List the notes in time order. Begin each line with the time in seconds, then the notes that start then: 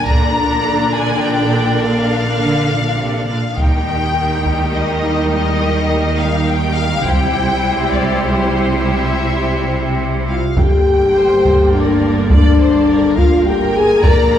0.06 A#1 A#2 D3 A#3 D4 A#4 D5 A#5, taiko
0.94 G#5
1.22 G5
1.81 F5
2.41 D3
2.70 A#2
3.00 C3
3.28 A#2 F5
3.58 D#2 D#3 G3 A#3 D#4 G4 A#4 G5, taiko
4.45 taiko
4.75 D#5
5.33 D#5
6.19 F5
6.49 G5
6.76 F5
7.04 C2 C3 G3 C4 E4 G4 C5 G5, taiko
7.92 D5, taiko
8.22 C5
8.81 E5
10.28 F4 F5
10.57 G1 G2 D3 A#3 G4 G5, taiko
11.16 C5
11.45 taiko
11.74 D4 A#4 D5
12.31 D4 D5, taiko
12.60 C5
12.89 A#4
13.17 F4 F5, taiko
13.46 G4 A#4 G5
13.74 G#4 G#5
14.02 A#1 A#2 D3 A#3 A#4 D5 A#5, taiko
14.32 D5